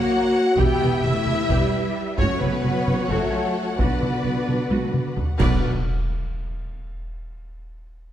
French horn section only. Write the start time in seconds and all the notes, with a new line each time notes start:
Already playing: F#4
0.57 G4
1.04 E4
2.17 C#4
2.39 B3
3.10 A3
3.79 B3
5.39 B3